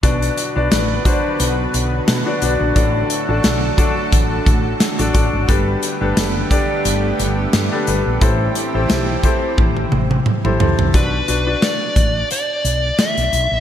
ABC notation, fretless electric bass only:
X:1
M:4/4
L:1/16
Q:"Swing 16ths" 1/4=88
K:Bphr
V:1 name="Fretless electric bass" clef=bass
B,,,2 z B,,, A,,,2 z2 B,,,2 B,,,2 B,, z B,,, _B,,, | A,,,2 z A,,, B,,,2 z2 A,,,2 A,,,2 z A,,, A,,, ^G,,, | G,,,2 z G,,, F,,,2 z2 G,,,2 G,,,2 G,, z G,,, _B,,, | A,,,2 z A,,, B,,,2 z2 A,,,2 A,,,2 z A,,, ^C,, =C,, |
B,,,2 B,,,2 z2 A,,,2 z2 B,,,2 z B,,, B,,, _B,,, |]